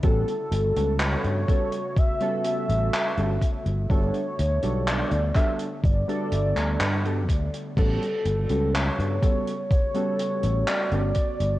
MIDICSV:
0, 0, Header, 1, 6, 480
1, 0, Start_track
1, 0, Tempo, 967742
1, 16, Time_signature, 4, 2, 24, 8
1, 5749, End_track
2, 0, Start_track
2, 0, Title_t, "Soft synth lead"
2, 0, Program_c, 0, 80
2, 21, Note_on_c, 0, 69, 100
2, 502, Note_on_c, 0, 73, 113
2, 509, Note_off_c, 0, 69, 0
2, 982, Note_on_c, 0, 76, 116
2, 990, Note_off_c, 0, 73, 0
2, 1219, Note_off_c, 0, 76, 0
2, 1223, Note_on_c, 0, 76, 112
2, 1680, Note_off_c, 0, 76, 0
2, 1936, Note_on_c, 0, 73, 106
2, 2417, Note_on_c, 0, 74, 106
2, 2424, Note_off_c, 0, 73, 0
2, 2653, Note_off_c, 0, 74, 0
2, 2656, Note_on_c, 0, 76, 107
2, 2726, Note_off_c, 0, 76, 0
2, 2896, Note_on_c, 0, 74, 106
2, 3596, Note_off_c, 0, 74, 0
2, 3855, Note_on_c, 0, 69, 96
2, 4332, Note_on_c, 0, 73, 109
2, 4339, Note_off_c, 0, 69, 0
2, 4811, Note_off_c, 0, 73, 0
2, 4814, Note_on_c, 0, 73, 112
2, 5296, Note_on_c, 0, 74, 106
2, 5303, Note_off_c, 0, 73, 0
2, 5749, Note_off_c, 0, 74, 0
2, 5749, End_track
3, 0, Start_track
3, 0, Title_t, "Synth keys"
3, 0, Program_c, 1, 88
3, 13, Note_on_c, 1, 55, 99
3, 14, Note_on_c, 1, 59, 93
3, 17, Note_on_c, 1, 61, 89
3, 18, Note_on_c, 1, 66, 92
3, 20, Note_on_c, 1, 69, 108
3, 158, Note_off_c, 1, 55, 0
3, 159, Note_off_c, 1, 59, 0
3, 160, Note_off_c, 1, 61, 0
3, 160, Note_off_c, 1, 66, 0
3, 161, Note_off_c, 1, 69, 0
3, 373, Note_on_c, 1, 55, 85
3, 374, Note_on_c, 1, 59, 77
3, 377, Note_on_c, 1, 61, 80
3, 378, Note_on_c, 1, 66, 80
3, 381, Note_on_c, 1, 69, 94
3, 706, Note_off_c, 1, 55, 0
3, 706, Note_off_c, 1, 59, 0
3, 707, Note_off_c, 1, 61, 0
3, 708, Note_off_c, 1, 66, 0
3, 709, Note_off_c, 1, 69, 0
3, 732, Note_on_c, 1, 55, 85
3, 733, Note_on_c, 1, 59, 82
3, 736, Note_on_c, 1, 61, 79
3, 738, Note_on_c, 1, 66, 80
3, 739, Note_on_c, 1, 69, 95
3, 878, Note_off_c, 1, 55, 0
3, 878, Note_off_c, 1, 59, 0
3, 880, Note_off_c, 1, 61, 0
3, 880, Note_off_c, 1, 66, 0
3, 881, Note_off_c, 1, 69, 0
3, 1092, Note_on_c, 1, 55, 95
3, 1094, Note_on_c, 1, 59, 92
3, 1096, Note_on_c, 1, 61, 91
3, 1098, Note_on_c, 1, 66, 86
3, 1100, Note_on_c, 1, 69, 113
3, 1545, Note_off_c, 1, 55, 0
3, 1546, Note_off_c, 1, 59, 0
3, 1547, Note_off_c, 1, 61, 0
3, 1548, Note_off_c, 1, 66, 0
3, 1549, Note_off_c, 1, 69, 0
3, 1572, Note_on_c, 1, 55, 86
3, 1573, Note_on_c, 1, 59, 79
3, 1576, Note_on_c, 1, 61, 78
3, 1576, Note_on_c, 1, 66, 79
3, 1577, Note_on_c, 1, 69, 92
3, 1663, Note_off_c, 1, 55, 0
3, 1664, Note_off_c, 1, 59, 0
3, 1665, Note_off_c, 1, 61, 0
3, 1666, Note_off_c, 1, 66, 0
3, 1666, Note_off_c, 1, 69, 0
3, 1931, Note_on_c, 1, 55, 95
3, 1932, Note_on_c, 1, 59, 90
3, 1934, Note_on_c, 1, 62, 88
3, 1937, Note_on_c, 1, 66, 89
3, 1938, Note_on_c, 1, 69, 106
3, 2077, Note_off_c, 1, 55, 0
3, 2078, Note_off_c, 1, 59, 0
3, 2079, Note_off_c, 1, 62, 0
3, 2080, Note_off_c, 1, 66, 0
3, 2081, Note_off_c, 1, 69, 0
3, 2292, Note_on_c, 1, 55, 84
3, 2294, Note_on_c, 1, 59, 80
3, 2295, Note_on_c, 1, 62, 79
3, 2297, Note_on_c, 1, 66, 76
3, 2299, Note_on_c, 1, 69, 91
3, 2625, Note_off_c, 1, 55, 0
3, 2626, Note_off_c, 1, 59, 0
3, 2627, Note_off_c, 1, 62, 0
3, 2627, Note_off_c, 1, 66, 0
3, 2629, Note_off_c, 1, 69, 0
3, 2652, Note_on_c, 1, 55, 84
3, 2655, Note_on_c, 1, 59, 80
3, 2656, Note_on_c, 1, 62, 81
3, 2658, Note_on_c, 1, 66, 79
3, 2660, Note_on_c, 1, 69, 97
3, 2798, Note_off_c, 1, 55, 0
3, 2799, Note_off_c, 1, 59, 0
3, 2800, Note_off_c, 1, 62, 0
3, 2800, Note_off_c, 1, 66, 0
3, 2802, Note_off_c, 1, 69, 0
3, 3013, Note_on_c, 1, 55, 101
3, 3015, Note_on_c, 1, 59, 88
3, 3017, Note_on_c, 1, 62, 92
3, 3019, Note_on_c, 1, 66, 85
3, 3021, Note_on_c, 1, 69, 112
3, 3466, Note_off_c, 1, 55, 0
3, 3467, Note_off_c, 1, 59, 0
3, 3468, Note_off_c, 1, 62, 0
3, 3469, Note_off_c, 1, 66, 0
3, 3470, Note_off_c, 1, 69, 0
3, 3493, Note_on_c, 1, 55, 88
3, 3495, Note_on_c, 1, 59, 78
3, 3497, Note_on_c, 1, 62, 75
3, 3499, Note_on_c, 1, 66, 77
3, 3501, Note_on_c, 1, 69, 94
3, 3584, Note_off_c, 1, 55, 0
3, 3585, Note_off_c, 1, 59, 0
3, 3586, Note_off_c, 1, 62, 0
3, 3587, Note_off_c, 1, 66, 0
3, 3588, Note_off_c, 1, 69, 0
3, 3851, Note_on_c, 1, 55, 96
3, 3853, Note_on_c, 1, 59, 87
3, 3855, Note_on_c, 1, 61, 91
3, 3857, Note_on_c, 1, 66, 90
3, 3858, Note_on_c, 1, 69, 108
3, 3997, Note_off_c, 1, 55, 0
3, 3998, Note_off_c, 1, 59, 0
3, 3999, Note_off_c, 1, 61, 0
3, 4000, Note_off_c, 1, 66, 0
3, 4001, Note_off_c, 1, 69, 0
3, 4211, Note_on_c, 1, 55, 86
3, 4213, Note_on_c, 1, 59, 77
3, 4215, Note_on_c, 1, 61, 78
3, 4216, Note_on_c, 1, 66, 79
3, 4219, Note_on_c, 1, 69, 97
3, 4545, Note_off_c, 1, 55, 0
3, 4546, Note_off_c, 1, 59, 0
3, 4546, Note_off_c, 1, 61, 0
3, 4547, Note_off_c, 1, 66, 0
3, 4548, Note_off_c, 1, 69, 0
3, 4571, Note_on_c, 1, 55, 87
3, 4573, Note_on_c, 1, 59, 81
3, 4575, Note_on_c, 1, 61, 80
3, 4577, Note_on_c, 1, 66, 80
3, 4578, Note_on_c, 1, 69, 97
3, 4717, Note_off_c, 1, 55, 0
3, 4718, Note_off_c, 1, 59, 0
3, 4719, Note_off_c, 1, 61, 0
3, 4720, Note_off_c, 1, 66, 0
3, 4721, Note_off_c, 1, 69, 0
3, 4931, Note_on_c, 1, 55, 96
3, 4933, Note_on_c, 1, 59, 91
3, 4934, Note_on_c, 1, 61, 89
3, 4937, Note_on_c, 1, 66, 91
3, 4939, Note_on_c, 1, 69, 111
3, 5385, Note_off_c, 1, 55, 0
3, 5386, Note_off_c, 1, 59, 0
3, 5386, Note_off_c, 1, 61, 0
3, 5388, Note_off_c, 1, 66, 0
3, 5389, Note_off_c, 1, 69, 0
3, 5414, Note_on_c, 1, 55, 86
3, 5416, Note_on_c, 1, 59, 75
3, 5418, Note_on_c, 1, 61, 78
3, 5420, Note_on_c, 1, 66, 77
3, 5421, Note_on_c, 1, 69, 93
3, 5505, Note_off_c, 1, 55, 0
3, 5505, Note_off_c, 1, 59, 0
3, 5507, Note_off_c, 1, 61, 0
3, 5507, Note_off_c, 1, 66, 0
3, 5508, Note_off_c, 1, 69, 0
3, 5749, End_track
4, 0, Start_track
4, 0, Title_t, "Ambient pad"
4, 0, Program_c, 2, 92
4, 0, Note_on_c, 2, 55, 77
4, 0, Note_on_c, 2, 57, 80
4, 0, Note_on_c, 2, 59, 77
4, 18, Note_on_c, 2, 49, 89
4, 19, Note_on_c, 2, 66, 97
4, 1676, Note_off_c, 2, 55, 0
4, 1680, Note_off_c, 2, 49, 0
4, 1696, Note_on_c, 2, 50, 84
4, 1697, Note_on_c, 2, 55, 77
4, 2638, Note_off_c, 2, 66, 0
4, 3835, Note_off_c, 2, 59, 0
4, 3836, Note_off_c, 2, 50, 0
4, 3854, Note_on_c, 2, 59, 80
4, 3854, Note_on_c, 2, 66, 93
4, 3855, Note_on_c, 2, 49, 85
4, 5516, Note_off_c, 2, 57, 0
4, 5519, Note_off_c, 2, 49, 0
4, 5534, Note_on_c, 2, 57, 81
4, 5536, Note_on_c, 2, 50, 84
4, 5749, Note_off_c, 2, 50, 0
4, 5749, Note_off_c, 2, 55, 0
4, 5749, Note_off_c, 2, 57, 0
4, 5749, Note_off_c, 2, 59, 0
4, 5749, Note_off_c, 2, 66, 0
4, 5749, End_track
5, 0, Start_track
5, 0, Title_t, "Fretless electric bass"
5, 0, Program_c, 3, 35
5, 16, Note_on_c, 3, 33, 100
5, 112, Note_off_c, 3, 33, 0
5, 255, Note_on_c, 3, 31, 97
5, 351, Note_off_c, 3, 31, 0
5, 378, Note_on_c, 3, 37, 87
5, 567, Note_off_c, 3, 37, 0
5, 616, Note_on_c, 3, 43, 89
5, 711, Note_off_c, 3, 43, 0
5, 1336, Note_on_c, 3, 33, 88
5, 1431, Note_off_c, 3, 33, 0
5, 1576, Note_on_c, 3, 31, 89
5, 1671, Note_off_c, 3, 31, 0
5, 1816, Note_on_c, 3, 31, 82
5, 1911, Note_off_c, 3, 31, 0
5, 1935, Note_on_c, 3, 31, 97
5, 2031, Note_off_c, 3, 31, 0
5, 2178, Note_on_c, 3, 38, 98
5, 2273, Note_off_c, 3, 38, 0
5, 2298, Note_on_c, 3, 35, 85
5, 2488, Note_off_c, 3, 35, 0
5, 2536, Note_on_c, 3, 38, 90
5, 2631, Note_off_c, 3, 38, 0
5, 2894, Note_on_c, 3, 31, 78
5, 2991, Note_off_c, 3, 31, 0
5, 3135, Note_on_c, 3, 31, 85
5, 3231, Note_off_c, 3, 31, 0
5, 3254, Note_on_c, 3, 38, 82
5, 3350, Note_off_c, 3, 38, 0
5, 3374, Note_on_c, 3, 43, 91
5, 3614, Note_off_c, 3, 43, 0
5, 3614, Note_on_c, 3, 38, 89
5, 3711, Note_off_c, 3, 38, 0
5, 3854, Note_on_c, 3, 33, 98
5, 3951, Note_off_c, 3, 33, 0
5, 4093, Note_on_c, 3, 31, 96
5, 4190, Note_off_c, 3, 31, 0
5, 4215, Note_on_c, 3, 37, 84
5, 4406, Note_off_c, 3, 37, 0
5, 4456, Note_on_c, 3, 43, 91
5, 4551, Note_off_c, 3, 43, 0
5, 5176, Note_on_c, 3, 33, 86
5, 5271, Note_off_c, 3, 33, 0
5, 5416, Note_on_c, 3, 31, 92
5, 5511, Note_off_c, 3, 31, 0
5, 5656, Note_on_c, 3, 31, 82
5, 5749, Note_off_c, 3, 31, 0
5, 5749, End_track
6, 0, Start_track
6, 0, Title_t, "Drums"
6, 14, Note_on_c, 9, 42, 64
6, 16, Note_on_c, 9, 36, 113
6, 63, Note_off_c, 9, 42, 0
6, 65, Note_off_c, 9, 36, 0
6, 139, Note_on_c, 9, 42, 45
6, 188, Note_off_c, 9, 42, 0
6, 258, Note_on_c, 9, 42, 105
6, 308, Note_off_c, 9, 42, 0
6, 379, Note_on_c, 9, 42, 70
6, 429, Note_off_c, 9, 42, 0
6, 495, Note_on_c, 9, 39, 120
6, 498, Note_on_c, 9, 42, 63
6, 545, Note_off_c, 9, 39, 0
6, 548, Note_off_c, 9, 42, 0
6, 617, Note_on_c, 9, 42, 45
6, 666, Note_off_c, 9, 42, 0
6, 735, Note_on_c, 9, 36, 98
6, 740, Note_on_c, 9, 42, 89
6, 785, Note_off_c, 9, 36, 0
6, 790, Note_off_c, 9, 42, 0
6, 854, Note_on_c, 9, 42, 61
6, 904, Note_off_c, 9, 42, 0
6, 975, Note_on_c, 9, 36, 116
6, 978, Note_on_c, 9, 42, 65
6, 1024, Note_off_c, 9, 36, 0
6, 1027, Note_off_c, 9, 42, 0
6, 1094, Note_on_c, 9, 42, 43
6, 1144, Note_off_c, 9, 42, 0
6, 1213, Note_on_c, 9, 42, 104
6, 1262, Note_off_c, 9, 42, 0
6, 1337, Note_on_c, 9, 42, 64
6, 1387, Note_off_c, 9, 42, 0
6, 1457, Note_on_c, 9, 42, 71
6, 1458, Note_on_c, 9, 39, 109
6, 1507, Note_off_c, 9, 42, 0
6, 1508, Note_off_c, 9, 39, 0
6, 1576, Note_on_c, 9, 42, 41
6, 1625, Note_off_c, 9, 42, 0
6, 1695, Note_on_c, 9, 36, 59
6, 1698, Note_on_c, 9, 42, 96
6, 1744, Note_off_c, 9, 36, 0
6, 1748, Note_off_c, 9, 42, 0
6, 1817, Note_on_c, 9, 42, 61
6, 1867, Note_off_c, 9, 42, 0
6, 1935, Note_on_c, 9, 36, 115
6, 1937, Note_on_c, 9, 42, 69
6, 1984, Note_off_c, 9, 36, 0
6, 1987, Note_off_c, 9, 42, 0
6, 2055, Note_on_c, 9, 42, 44
6, 2104, Note_off_c, 9, 42, 0
6, 2178, Note_on_c, 9, 42, 89
6, 2227, Note_off_c, 9, 42, 0
6, 2295, Note_on_c, 9, 42, 63
6, 2344, Note_off_c, 9, 42, 0
6, 2419, Note_on_c, 9, 39, 109
6, 2419, Note_on_c, 9, 42, 63
6, 2469, Note_off_c, 9, 39, 0
6, 2469, Note_off_c, 9, 42, 0
6, 2537, Note_on_c, 9, 42, 45
6, 2586, Note_off_c, 9, 42, 0
6, 2655, Note_on_c, 9, 36, 100
6, 2655, Note_on_c, 9, 39, 37
6, 2659, Note_on_c, 9, 42, 105
6, 2704, Note_off_c, 9, 36, 0
6, 2704, Note_off_c, 9, 39, 0
6, 2708, Note_off_c, 9, 42, 0
6, 2774, Note_on_c, 9, 42, 63
6, 2823, Note_off_c, 9, 42, 0
6, 2895, Note_on_c, 9, 36, 119
6, 2901, Note_on_c, 9, 42, 68
6, 2944, Note_off_c, 9, 36, 0
6, 2951, Note_off_c, 9, 42, 0
6, 3021, Note_on_c, 9, 42, 43
6, 3071, Note_off_c, 9, 42, 0
6, 3134, Note_on_c, 9, 42, 90
6, 3184, Note_off_c, 9, 42, 0
6, 3257, Note_on_c, 9, 42, 69
6, 3258, Note_on_c, 9, 39, 37
6, 3307, Note_off_c, 9, 42, 0
6, 3308, Note_off_c, 9, 39, 0
6, 3375, Note_on_c, 9, 39, 108
6, 3376, Note_on_c, 9, 42, 66
6, 3425, Note_off_c, 9, 39, 0
6, 3426, Note_off_c, 9, 42, 0
6, 3499, Note_on_c, 9, 42, 44
6, 3548, Note_off_c, 9, 42, 0
6, 3615, Note_on_c, 9, 36, 58
6, 3619, Note_on_c, 9, 42, 103
6, 3664, Note_off_c, 9, 36, 0
6, 3668, Note_off_c, 9, 42, 0
6, 3740, Note_on_c, 9, 42, 67
6, 3790, Note_off_c, 9, 42, 0
6, 3854, Note_on_c, 9, 36, 120
6, 3856, Note_on_c, 9, 49, 73
6, 3861, Note_on_c, 9, 42, 67
6, 3904, Note_off_c, 9, 36, 0
6, 3906, Note_off_c, 9, 49, 0
6, 3910, Note_off_c, 9, 42, 0
6, 3981, Note_on_c, 9, 42, 50
6, 4030, Note_off_c, 9, 42, 0
6, 4094, Note_on_c, 9, 42, 96
6, 4144, Note_off_c, 9, 42, 0
6, 4212, Note_on_c, 9, 42, 72
6, 4262, Note_off_c, 9, 42, 0
6, 4339, Note_on_c, 9, 42, 65
6, 4341, Note_on_c, 9, 39, 112
6, 4389, Note_off_c, 9, 42, 0
6, 4390, Note_off_c, 9, 39, 0
6, 4461, Note_on_c, 9, 42, 44
6, 4511, Note_off_c, 9, 42, 0
6, 4574, Note_on_c, 9, 36, 107
6, 4576, Note_on_c, 9, 42, 95
6, 4624, Note_off_c, 9, 36, 0
6, 4625, Note_off_c, 9, 42, 0
6, 4698, Note_on_c, 9, 42, 65
6, 4748, Note_off_c, 9, 42, 0
6, 4815, Note_on_c, 9, 36, 118
6, 4818, Note_on_c, 9, 42, 68
6, 4864, Note_off_c, 9, 36, 0
6, 4867, Note_off_c, 9, 42, 0
6, 4934, Note_on_c, 9, 42, 46
6, 4983, Note_off_c, 9, 42, 0
6, 5056, Note_on_c, 9, 42, 94
6, 5106, Note_off_c, 9, 42, 0
6, 5174, Note_on_c, 9, 42, 68
6, 5224, Note_off_c, 9, 42, 0
6, 5293, Note_on_c, 9, 42, 65
6, 5296, Note_on_c, 9, 39, 111
6, 5343, Note_off_c, 9, 42, 0
6, 5346, Note_off_c, 9, 39, 0
6, 5415, Note_on_c, 9, 42, 47
6, 5465, Note_off_c, 9, 42, 0
6, 5530, Note_on_c, 9, 42, 100
6, 5535, Note_on_c, 9, 36, 60
6, 5579, Note_off_c, 9, 42, 0
6, 5585, Note_off_c, 9, 36, 0
6, 5657, Note_on_c, 9, 42, 75
6, 5706, Note_off_c, 9, 42, 0
6, 5749, End_track
0, 0, End_of_file